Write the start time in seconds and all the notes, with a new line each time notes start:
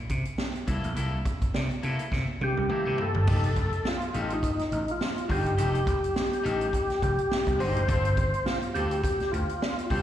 0.10 C3, kick, closed hi-hat
0.25 closed hi-hat
0.38 snare
0.55 closed hi-hat
0.67 C2 A#3 E4 A4, kick, closed hi-hat
0.84 A#1, closed hi-hat
0.96 C2 A#3 E4 A4, closed hi-hat
1.25 kick, closed hi-hat
1.42 muted slap bass stroke, kick, closed hi-hat
1.54 C3, snare
1.71 closed hi-hat
1.83 C3 A#3 E4 A4, closed hi-hat
1.99 closed hi-hat
2.12 C3, kick, snare
2.41 C3 G4, high tom
2.57 C2, high tom
2.69 A#3 E4 A4, mid tom
2.85 C3 A#3 E4 A4
2.98 floor tom
3.02 A4
3.14 G1, floor tom
3.27 F1 D#4 G4 A4, kick, crash
3.44 closed hi-hat
3.56 F1, kick, closed hi-hat
3.73 closed hi-hat
3.85 F4, snare
4.02 closed hi-hat
4.14 A1 D#4 G4 A4, closed hi-hat
4.30 D#4, closed hi-hat
4.43 kick, closed hi-hat
4.59 muted slap bass stroke, snare, closed hi-hat
4.72 A1, closed hi-hat
4.88 F4, closed hi-hat
5.01 snare
5.18 closed hi-hat
5.29 G1 D#4 G4 A4, kick, open hi-hat
5.46 G1, closed hi-hat
5.57 F1 D#4 G4 A4, closed hi-hat
5.75 closed hi-hat
5.87 F1, kick, closed hi-hat
6.04 closed hi-hat
6.16 snare
6.33 closed hi-hat
6.43 A1 D#4 G4 A4, closed hi-hat
6.61 closed hi-hat
6.73 kick, closed hi-hat
6.90 muted slap bass stroke, snare, closed hi-hat
7.02 F1 G4, kick, closed hi-hat
7.19 closed hi-hat
7.31 snare
7.47 C2, kick, closed hi-hat
7.59 G1 D#4 G4 A4 C5, open hi-hat
7.76 F1, closed hi-hat
7.88 G1 C4 F4 A4, kick, closed hi-hat
8.05 closed hi-hat
8.17 G1, kick, closed hi-hat
8.34 closed hi-hat
8.46 F4, snare
8.63 closed hi-hat
8.75 D2 C4 F4 G4 A4, closed hi-hat
8.91 closed hi-hat
9.04 G4, kick, closed hi-hat
9.20 muted slap bass stroke, snare, closed hi-hat
9.32 D2 F4, closed hi-hat
9.49 closed hi-hat
9.62 snare
9.79 closed hi-hat
9.90 C2 C4 F4 G4 A4, kick, open hi-hat